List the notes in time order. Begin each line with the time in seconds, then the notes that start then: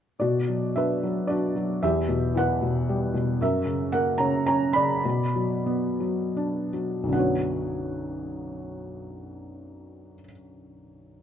0.20 B2 F#4 D5
0.49 F#3
0.76 D4 B4 E5
1.03 F#3
1.27 D4 F#4 D5
1.56 F#3
1.83 E2 G4 E5
2.09 B2
2.35 E3 F#5
2.39 B4
2.62 B2
2.89 G3
3.14 B2
3.41 F#2 A#4 E5
3.65 C#3
3.92 A#3 A#4 F#5
4.18 C#3 C#5 A#5
4.47 C#4 C#5 A#5
4.73 C#3 D5 B5
5.05 B2
5.36 F#3
5.66 B3
6.00 F#3
6.37 D4
6.73 F#3
7.03 B1 F#2
7.09 D3 B3 F#5
7.16 F#4 C#5